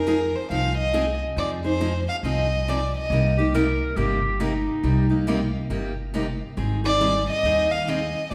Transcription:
Already playing: upright bass F2, violin A#4
0.07 steel-string acoustic guitar F3 C4 D#4 G#4
0.35 violin C5
0.50 upright bass C2, steel-string acoustic guitar F3 C4 D#4 G#4, violin F5
0.77 violin D#5
0.93 steel-string acoustic guitar F3 C4 D#4 G#4
1.36 upright bass F2, steel-string acoustic guitar F3 C4 D#4 G#4, violin D5
1.64 steel-string acoustic guitar C4 D#4 G#4, violin C5
1.81 steel-string acoustic guitar F3 C4 D#4 G#4
2.09 violin F5
2.23 upright bass C2, steel-string acoustic guitar F3 C4 D#4 G#4, violin D#5
2.68 steel-string acoustic guitar F3 C4 D#4 G#4, violin D5
2.97 violin D#5
3.10 upright bass C2, steel-string acoustic guitar C3 G3 A#3 D#4 G4
3.38 steel-string acoustic guitar A#3 D#4 G4, clarinet G4
3.54 steel-string acoustic guitar C3 G3 A#3 D#4 G4, clarinet A#4
3.96 upright bass G1, steel-string acoustic guitar C3 G3 A#3 D#4 G4, clarinet G4
4.40 steel-string acoustic guitar C3 G3 A#3 D#4 G4, clarinet D#4
4.83 upright bass C2, steel-string acoustic guitar C3 G3 A#3 D#4 G4
5.10 steel-string acoustic guitar A#3 D#4 G4
5.27 steel-string acoustic guitar C3 G3 A#3 D#4 G4
5.70 upright bass G1, steel-string acoustic guitar C3 G3 A#3 D#4 G4
6.14 steel-string acoustic guitar C3 G3 A#3 D#4 G4
6.57 upright bass G#1, steel-string acoustic guitar D#3 G3 C4 D#4 G#4
6.84 steel-string acoustic guitar C4 D#4 G#4, violin D5
7.01 steel-string acoustic guitar D#3 G3 C4 D#4 G#4
7.30 violin D#5
7.43 upright bass D#2, steel-string acoustic guitar D#3 G3 C4 D#4 G#4
7.71 violin F5
7.87 steel-string acoustic guitar D#3 G3 C4 D#4 G#4, violin D#5
8.31 upright bass G1, steel-string acoustic guitar D3 F3

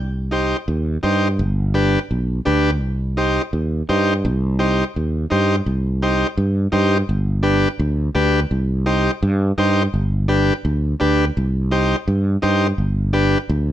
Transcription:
Already playing: fretless electric bass C2
0.31 transistor combo organ D#4 G4 C5
0.68 fretless electric bass D#2
1.03 fretless electric bass G2, transistor combo organ D#4 G4 C5
1.39 fretless electric bass G1
1.74 transistor combo organ D4 G4 B4
2.11 fretless electric bass B1
2.45 fretless electric bass D2, transistor combo organ D4 G4 B4
2.81 fretless electric bass C2
3.17 transistor combo organ D#4 G4 C5
3.53 fretless electric bass D#2
3.89 fretless electric bass G2, transistor combo organ D#4 G4 C5
4.25 fretless electric bass C2
4.59 transistor combo organ D#4 G4 C5
4.96 fretless electric bass D#2
5.30 fretless electric bass G2, transistor combo organ D#4 G4 C5
5.66 fretless electric bass C2
6.02 transistor combo organ D#4 G4 C5
6.37 fretless electric bass G2
6.72 fretless electric bass G2, transistor combo organ D#4 G4 C5
7.09 fretless electric bass G1
7.43 transistor combo organ D4 G4 B4
7.79 fretless electric bass D2
8.15 fretless electric bass D2, transistor combo organ D4 G4 B4
8.51 fretless electric bass C2
8.86 transistor combo organ D#4 G4 C5
9.23 fretless electric bass G2
9.58 fretless electric bass G2, transistor combo organ D#4 G4 C5
9.94 fretless electric bass G1
10.28 transistor combo organ D4 G4 B4
10.65 fretless electric bass D2
11.00 fretless electric bass D2, transistor combo organ D4 G4 B4
11.37 fretless electric bass C2
11.71 transistor combo organ D#4 G4 C5
12.08 fretless electric bass G2
12.42 fretless electric bass G2, transistor combo organ D#4 G4 C5
12.78 fretless electric bass G1
13.13 transistor combo organ D4 G4 B4
13.49 fretless electric bass D2

